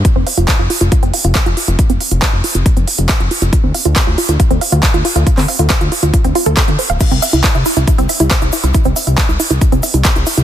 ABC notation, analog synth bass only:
X:1
M:4/4
L:1/16
Q:1/4=138
K:Dm
V:1 name="Analog synth bass" clef=bass
z F,,, z F,,, z F,,, z F,,, z F,,, z F,,, z F,,, z F,,, | z F,,, z F,,, z F,,, z F,,, z F,,, z F,,, z F,,, z F,,, | z D,, z D,, z D,, z D,, z D,, z D,, z D,, z D,, | z D,, z D,, z D,, z D,, z D,, z D,, z D,, z D,,, |
z C,, z C,, z C,, z C,, z C,, z C,, z C,, z C,, | z C,, z C,, z C,, z C,, z C,, z C,, z C,, z C,, |]